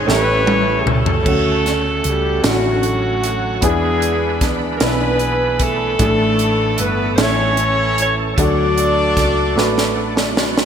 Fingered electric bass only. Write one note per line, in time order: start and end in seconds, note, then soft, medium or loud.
0.08 0.83 A1 medium
0.86 1.23 C#2 medium
1.26 2.01 D2 medium
2.05 2.41 C#2 medium
2.44 3.59 A1 medium
3.62 4.41 E2 medium
4.41 4.78 D2 medium
4.81 5.96 B1 medium
6.00 6.75 A1 loud
6.79 7.16 G1 medium
7.18 8.33 A1 medium
8.38 9.13 D2 loud
9.17 9.56 C#2 medium
9.56 10.65 A1 medium